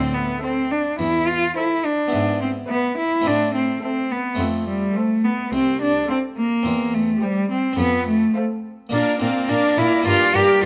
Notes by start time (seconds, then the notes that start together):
Already playing: A2 C4 E4 A4
0.14 B3
0.41 C4 A4 C5 E5
0.71 D4
0.99 E2 E4
1.27 F4
1.56 E4 A4 C5 E5
1.85 D4
2.08 B3 E4
2.13 G#2
2.41 C4
2.69 B3 B4 E5
2.98 E4
3.21 A3 C4
3.25 A2 D4
3.54 C4
3.83 C4 A4 C5 E5
4.12 B3
4.35 A3 C4
4.39 F2 A3
4.68 G3
4.96 A3 A4 C5 F5
5.25 B3
5.53 C2 C4
5.81 D4
6.09 C4 A4 C5 F5
6.37 A#3
6.63 E2 C4
6.94 A3
7.22 G3 G4 C5 G5
7.51 C4
7.73 C4
7.78 F2 B3
8.07 A3
8.35 A3 A4 C5 F5
8.89 A#2 A#3 D4 A#4 D5 F5
9.20 A#2 C4 A#4 D5 F5
9.48 A#2 D4 A#4 D5 F5
9.77 A#2 E4 A#4 D5 F5
10.03 G2 A#3 D4 A#4 G5
10.07 F4 D5
10.34 G2 G4 A#4 D5 G5
10.62 G2